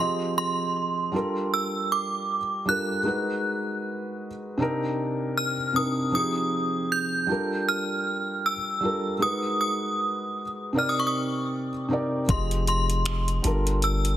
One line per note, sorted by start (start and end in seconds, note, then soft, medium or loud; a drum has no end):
0.00 1.12 F3 medium
0.00 1.13 C4 medium
0.00 1.14 G4 medium
0.00 1.14 G#4 medium
0.00 1.15 D#5 medium
0.00 0.13 C6 medium
0.38 1.56 C6 medium
1.12 2.37 G3 medium
1.12 2.37 D4 medium
1.12 2.38 F4 medium
1.12 2.39 A4 medium
1.16 2.39 A#4 medium
1.54 1.92 E6 medium
1.92 2.64 D6 medium
2.65 2.98 G3 medium
2.65 2.98 D4 medium
2.65 2.99 F4 medium
2.65 3.00 A4 medium
2.65 3.79 F#6 medium
2.70 3.00 A#4 medium
3.04 4.26 G#3 medium
3.04 4.27 D#4 medium
3.04 4.27 F#4 medium
3.04 4.28 A#4 medium
3.08 4.29 B4 medium
4.58 5.53 C3 medium
4.58 5.54 C4 medium
4.58 5.55 D4 medium
4.58 5.55 D#4 medium
4.62 5.56 A#4 loud
5.38 5.77 F6 medium
5.73 6.06 C3 medium
5.73 6.06 C4 medium
5.73 6.07 D4 medium
5.73 6.07 D#4 medium
5.73 6.14 D#6 medium
5.77 6.08 A#4 medium
6.12 7.28 F3 medium
6.12 7.28 C4 medium
6.12 7.29 D#4 medium
6.12 7.30 G4 medium
6.12 6.93 D#6 medium
6.16 7.30 G#4 medium
6.92 7.64 G6 loud
7.27 8.52 G3 medium
7.27 8.53 D4 medium
7.27 8.53 F4 medium
7.27 8.54 A4 medium
7.31 8.54 A#4 medium
7.69 8.47 F6 medium
8.46 9.24 E6 medium
8.81 9.13 G3 medium
8.81 9.14 D4 medium
8.81 9.14 F4 medium
8.81 9.15 A4 medium
8.85 9.16 A#4 medium
9.19 10.42 G#3 medium
9.19 10.42 D#4 medium
9.19 10.43 F#4 medium
9.19 10.43 A#4 medium
9.19 9.60 D#6 medium
9.23 10.44 B4 medium
9.61 10.74 D#6 medium
10.73 11.69 C3 medium
10.73 11.69 C4 medium
10.73 11.70 D#4 medium
10.73 11.70 A#4 medium
10.77 11.71 D5 medium
10.77 10.89 F6 medium
10.89 10.99 D#6 medium
11.00 11.07 C#6 medium
11.07 11.14 D#6 medium
11.88 12.21 C3 medium
11.88 12.22 C4 medium
11.88 12.22 D#4 medium
11.88 12.23 A#4 medium
11.93 12.23 D5 medium
12.27 13.40 F1 loud
12.27 13.44 F3 medium
12.27 13.44 C4 medium
12.27 13.45 G4 medium
12.27 13.45 G#4 medium
12.27 12.67 C6 medium
12.27 kick loud
12.27 closed hi-hat medium
12.32 13.46 D#5 medium
12.51 closed hi-hat soft
12.67 13.79 C6 medium
12.67 closed hi-hat medium
12.90 closed hi-hat soft
13.06 finger snap loud
13.06 closed hi-hat medium
13.28 closed hi-hat soft
13.42 14.17 G1 loud
13.42 14.17 G3 medium
13.42 14.17 D4 medium
13.42 14.17 F4 medium
13.42 14.17 A4 medium
13.42 closed hi-hat medium
13.47 14.17 A#4 medium
13.67 closed hi-hat soft
13.82 14.17 E6 medium
13.82 closed hi-hat medium
14.05 closed hi-hat medium